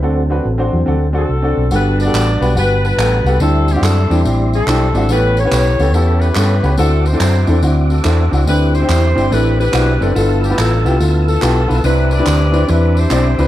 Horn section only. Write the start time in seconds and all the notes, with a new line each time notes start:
1.16 C4 F#4 A4
1.73 D4 F#4 B4
2.00 F#4 B4 D5
2.57 D4 F#4 B4
2.85 D4 F#4 B4
3.40 C4 E4 A4
3.71 G4
3.83 C4 E4 A4
4.55 C4 E4 A4
5.10 E4 G4 B4
5.39 E4 G4 C#5
5.94 C#4 E4 A4
6.20 E4 G4 B4
6.78 C4 F#4 A4
7.06 C5
7.20 E4 F#4 C5
7.90 C4 F#4 A4
8.47 E4 G4 B4
8.74 E4 G4 C5
9.32 E4 G4 B4
9.59 E4 G4 B4
10.17 D4 F4 A4
10.44 G4
10.59 D4 F4 A4
11.27 D4 F4 A4
11.84 D4 E4 B4
12.12 G4 B4 D5
12.69 D4 E4 B4
12.97 E4 G4 C5